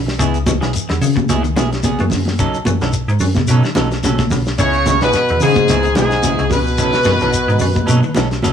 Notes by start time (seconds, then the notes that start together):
Already playing: B1
0.06 muted clean electric guitar stroke, snare, shekere
0.18 C#2 C#3 B3 E4 G#4, kick, closed hi-hat, shekere
0.34 closed hi-hat, shekere
0.46 C#2 E3, muted clean electric guitar stroke, kick, snare, closed hi-hat, high conga, shekere
0.61 B1 E3 E4 G#4, snare, closed hi-hat, shekere
0.73 muted clean electric guitar stroke, closed hi-hat, shekere
0.89 E2 D#3, muted clean electric guitar stroke, snare, closed hi-hat, shekere
1.01 C#3, open hi-hat, low conga, shekere
1.16 C#3, muted clean electric guitar stroke, kick, closed hi-hat, high conga, shekere
1.29 C#2 B3 E4 G#4, closed hi-hat, high conga, shekere
1.43 D#3, muted clean electric guitar stroke, closed hi-hat, shekere
1.56 B1 E3 B3 E4 G#4, snare, closed hi-hat, high conga, shekere
1.72 muted clean electric guitar stroke, snare, closed hi-hat, shekere
1.83 C#3 B3 G#4, muted clean electric guitar stroke, closed hi-hat, high conga, shekere
1.99 F#2 E3, closed hi-hat, high conga, shekere
2.10 muted clean electric guitar stroke, kick, snare, open hi-hat, low conga, shekere
2.25 muted clean electric guitar stroke, snare, high conga, shekere
2.39 B1 C#3 F#3 C#4 D#4 A4, kick, closed hi-hat, shekere
2.54 B1, closed hi-hat, shekere
2.65 F#2 E3, muted clean electric guitar stroke, kick, closed hi-hat, high conga, low conga, shekere
2.81 B1 E3 C#4 D#4 A4, snare, closed hi-hat, shekere
2.93 muted clean electric guitar stroke, closed hi-hat, shekere
3.08 G#2, muted clean electric guitar stroke, closed hi-hat, shekere
3.20 F#2, open hi-hat, low conga, shekere
3.35 C#3, muted clean electric guitar stroke, kick, snare, closed hi-hat, high conga, shekere
3.47 B2 F#3 C#4 D#4 A4, closed hi-hat, shekere
3.64 D#3, muted clean electric guitar stroke, snare, shekere
3.75 B1 E3 F#3 C#4 D#4 A4, snare, closed hi-hat, high conga, shekere
3.91 muted clean electric guitar stroke, snare, closed hi-hat, shekere
4.03 B1 C#3 F#3 C#4 A4, snare, closed hi-hat, high conga, low conga, shekere
4.18 C#3, kick, snare, closed hi-hat, high conga, shekere
4.30 B1, muted clean electric guitar stroke, kick, snare, open hi-hat, low conga, shekere
4.46 muted clean electric guitar stroke, snare, shekere
4.58 C#2 C#3 B3 E4 G#4 C#5, kick, closed hi-hat, shekere
4.73 closed hi-hat, shekere
4.86 C#2, muted clean electric guitar stroke, kick, snare, closed hi-hat, high conga, low conga, shekere
5.01 B1 B2 E3 E4 G#4 B4, snare, closed hi-hat, shekere
5.13 snare, closed hi-hat, shekere
5.28 E2 D#3, muted clean electric guitar stroke, closed hi-hat, shekere
5.40 G#2 C#3 G#4, open hi-hat, low conga, shekere
5.55 C#3, kick, closed hi-hat, high conga, shekere
5.68 C#2 B3 E4 G#4, snare, closed hi-hat, high conga, shekere
5.83 D#3, muted clean electric guitar stroke, closed hi-hat, shekere
5.95 B1 G#2 E3 B3 E4 G#4, snare, closed hi-hat, high conga, shekere
6.11 muted clean electric guitar stroke, snare, closed hi-hat, shekere
6.23 C#3 B3 E4 G#4, closed hi-hat, high conga, low conga, shekere
6.38 C#2 C#3, closed hi-hat, shekere
6.50 B2 B4, muted clean electric guitar stroke, kick, snare, open hi-hat, low conga, shekere
6.66 muted clean electric guitar stroke, shekere
6.78 B1 C#3 F#3 C#4 D#4 A4, kick, closed hi-hat, shekere
6.93 B1, snare, closed hi-hat, shekere
7.03 F#2, muted clean electric guitar stroke, kick, snare, closed hi-hat, high conga, low conga, shekere
7.08 E3
7.19 B1 E3 C#4 D#4 A4, closed hi-hat, shekere
7.33 muted clean electric guitar stroke, closed hi-hat, shekere
7.48 G#2 D#3, muted clean electric guitar stroke, closed hi-hat, shekere
7.59 F#2, open hi-hat, low conga, shekere
7.75 muted clean electric guitar stroke, kick, closed hi-hat, high conga, shekere
7.86 B2 F#3 C#4 D#4 A4, closed hi-hat, high conga, shekere
8.02 D#3, muted clean electric guitar stroke, shekere
8.15 B1 E3 F#3 C#4 D#4 A4, snare, closed hi-hat, high conga, shekere
8.31 muted clean electric guitar stroke, snare, closed hi-hat, shekere
8.42 B1 C#3 F#3 C#4 D#4 A4, closed hi-hat, high conga, low conga, shekere